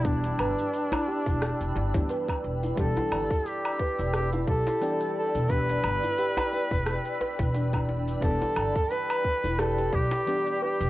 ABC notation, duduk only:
X:1
M:4/4
L:1/8
Q:"Swing 16ths" 1/4=88
K:Em
V:1 name="Duduk"
D6- D z | A2 G2 G A2 A | B6- B z | A2 B2 A G2 G |]